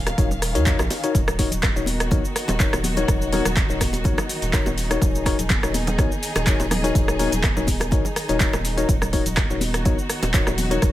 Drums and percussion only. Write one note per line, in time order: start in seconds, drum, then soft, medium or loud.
0.07 cross-stick medium
0.07 closed hi-hat medium
0.07 high bongo medium
0.07 shaker soft
0.18 kick loud
0.18 closed hi-hat soft
0.18 shaker medium
0.31 low bongo medium
0.31 shaker soft
0.42 cross-stick medium
0.42 open hi-hat medium
0.42 shaker medium
0.55 closed hi-hat medium
0.55 shaker medium
0.66 kick loud
0.66 clap loud
0.66 closed hi-hat soft
0.66 low bongo medium
0.66 shaker medium
0.79 cross-stick medium
0.79 high bongo loud
0.79 shaker medium
0.90 open hi-hat medium
0.90 high bongo medium
0.90 shaker medium
1.04 closed hi-hat medium
1.04 shaker medium
1.15 kick loud
1.15 closed hi-hat soft
1.15 shaker medium
1.28 cross-stick loud
1.28 low bongo medium
1.28 shaker medium
1.39 kick medium
1.39 open hi-hat medium
1.39 muted conga medium
1.39 high conga medium
1.39 shaker medium
1.51 closed hi-hat medium
1.51 low conga loud
1.51 shaker medium
1.63 kick loud
1.63 cross-stick medium
1.63 clap loud
1.63 closed hi-hat soft
1.63 low bongo medium
1.63 high conga medium
1.63 shaker medium
1.76 muted conga soft
1.76 shaker medium
1.86 open hi-hat medium
1.86 high conga loud
1.86 shaker medium
2.00 cross-stick medium
2.00 closed hi-hat medium
2.00 shaker soft
2.11 kick loud
2.11 closed hi-hat soft
2.11 low bongo medium
2.11 muted conga medium
2.11 high conga loud
2.11 shaker medium
2.25 shaker medium
2.36 cross-stick medium
2.36 open hi-hat medium
2.36 shaker medium
2.48 closed hi-hat medium
2.48 high bongo loud
2.48 low bongo loud
2.48 muted conga soft
2.48 shaker medium
2.60 kick loud
2.60 clap medium
2.60 closed hi-hat soft
2.60 shaker medium
2.73 cross-stick loud
2.73 high bongo loud
2.73 shaker medium
2.84 open hi-hat medium
2.84 high conga loud
2.84 low conga loud
2.84 shaker medium
2.97 closed hi-hat medium
2.97 low bongo medium
2.97 muted conga soft
2.97 shaker medium
3.08 kick loud
3.08 cross-stick medium
3.08 closed hi-hat soft
3.08 low conga medium
3.08 shaker loud
3.22 shaker medium
3.33 open hi-hat medium
3.33 low bongo loud
3.33 muted conga soft
3.33 high conga medium
3.33 shaker medium
3.45 cross-stick loud
3.45 closed hi-hat medium
3.45 low conga medium
3.45 shaker loud
3.57 kick loud
3.57 clap loud
3.57 closed hi-hat soft
3.57 shaker medium
3.69 muted conga soft
3.69 shaker medium
3.80 kick medium
3.80 cross-stick medium
3.80 open hi-hat medium
3.80 low bongo medium
3.80 high conga loud
3.80 shaker medium
3.93 closed hi-hat medium
3.93 high bongo medium
3.93 shaker medium
4.04 kick loud
4.04 closed hi-hat soft
4.04 muted conga medium
4.04 high conga loud
4.04 shaker medium
4.18 cross-stick loud
4.18 low bongo loud
4.18 shaker medium
4.29 open hi-hat medium
4.29 shaker medium
4.42 closed hi-hat medium
4.42 muted conga soft
4.42 shaker medium
4.53 kick loud
4.53 cross-stick medium
4.53 clap medium
4.53 closed hi-hat soft
4.53 shaker loud
4.66 high bongo loud
4.66 low bongo medium
4.66 high conga medium
4.66 shaker medium
4.78 open hi-hat medium
4.78 shaker medium
4.91 cross-stick medium
4.91 closed hi-hat medium
4.91 muted conga medium
4.91 shaker medium
5.02 kick loud
5.02 closed hi-hat soft
5.02 low bongo loud
5.02 shaker loud
5.15 shaker medium
5.26 kick medium
5.26 cross-stick medium
5.26 open hi-hat medium
5.26 muted conga medium
5.26 high conga medium
5.26 shaker medium
5.39 closed hi-hat medium
5.39 low conga medium
5.39 shaker loud
5.50 kick loud
5.50 clap loud
5.50 closed hi-hat soft
5.50 low bongo medium
5.50 high conga medium
5.50 shaker medium
5.63 cross-stick loud
5.63 muted conga soft
5.63 shaker medium
5.74 open hi-hat medium
5.74 high conga loud
5.74 shaker loud
5.87 closed hi-hat medium
5.87 low bongo loud
5.87 shaker medium
5.98 kick loud
5.98 cross-stick medium
5.98 closed hi-hat soft
5.98 muted conga medium
5.98 high conga loud
5.98 shaker medium
6.12 shaker medium
6.23 open hi-hat medium
6.23 shaker loud
6.36 cross-stick loud
6.36 closed hi-hat medium
6.36 high bongo loud
6.36 low bongo medium
6.36 muted conga soft
6.36 shaker medium
6.47 kick loud
6.47 clap loud
6.47 closed hi-hat soft
6.47 shaker medium
6.60 high bongo loud
6.60 shaker medium
6.71 cross-stick medium
6.71 open hi-hat medium
6.71 low bongo loud
6.71 high conga medium
6.71 low conga loud
6.71 shaker medium
6.84 closed hi-hat medium
6.84 muted conga soft
6.84 shaker medium
6.95 kick loud
6.95 closed hi-hat soft
6.95 low conga medium
6.95 shaker loud
7.08 cross-stick medium
7.08 shaker medium
7.19 open hi-hat medium
7.19 low bongo medium
7.19 muted conga soft
7.19 high conga medium
7.19 shaker medium
7.32 closed hi-hat medium
7.32 low conga medium
7.32 shaker loud
7.44 kick loud
7.44 cross-stick medium
7.44 clap loud
7.44 closed hi-hat soft
7.44 high conga medium
7.44 shaker medium
7.57 low bongo medium
7.57 muted conga soft
7.57 shaker medium
7.67 kick medium
7.67 open hi-hat medium
7.67 high conga loud
7.67 shaker loud
7.80 cross-stick medium
7.80 closed hi-hat medium
7.80 high bongo medium
7.80 shaker medium
7.91 kick loud
7.91 closed hi-hat soft
7.91 muted conga soft
7.91 high conga loud
7.91 shaker medium
8.05 low bongo medium
8.05 shaker medium
8.16 cross-stick medium
8.16 open hi-hat medium
8.16 shaker medium
8.28 closed hi-hat medium
8.28 muted conga soft
8.28 shaker medium
8.40 kick loud
8.40 clap loud
8.40 closed hi-hat soft
8.40 low bongo loud
8.40 shaker medium
8.53 cross-stick medium
8.53 high bongo loud
8.53 high conga medium
8.53 shaker medium
8.65 open hi-hat medium
8.65 shaker loud
8.78 closed hi-hat medium
8.78 muted conga soft
8.78 shaker medium
8.89 kick loud
8.89 closed hi-hat soft
8.89 shaker medium
9.02 cross-stick medium
9.02 low bongo medium
9.02 shaker medium
9.13 kick medium
9.13 open hi-hat medium
9.13 muted conga medium
9.13 high conga medium
9.13 shaker medium
9.26 closed hi-hat medium
9.26 low conga medium
9.26 shaker medium
9.37 kick loud
9.37 cross-stick medium
9.37 clap loud
9.37 closed hi-hat soft
9.37 low bongo loud
9.37 high conga medium
9.37 shaker medium
9.50 muted conga soft
9.50 shaker medium
9.61 open hi-hat medium
9.61 high conga loud
9.61 shaker medium
9.74 cross-stick medium
9.74 closed hi-hat medium
9.74 shaker medium
9.85 kick loud
9.85 closed hi-hat soft
9.85 low bongo medium
9.85 muted conga medium
9.85 high conga loud
9.85 shaker medium
9.99 shaker medium
10.10 cross-stick medium
10.10 open hi-hat medium
10.10 shaker loud
10.23 closed hi-hat medium
10.23 high bongo loud
10.23 low bongo medium
10.23 shaker medium
10.34 kick loud
10.34 clap loud
10.34 closed hi-hat soft
10.34 shaker medium
10.47 cross-stick medium
10.47 high bongo loud
10.47 shaker medium
10.58 open hi-hat medium
10.58 high conga medium
10.58 low conga loud
10.58 shaker medium
10.71 closed hi-hat medium
10.71 low bongo medium
10.71 muted conga soft
10.71 shaker soft
10.82 kick loud
10.82 cross-stick medium
10.82 closed hi-hat soft
10.82 low conga medium
10.82 shaker medium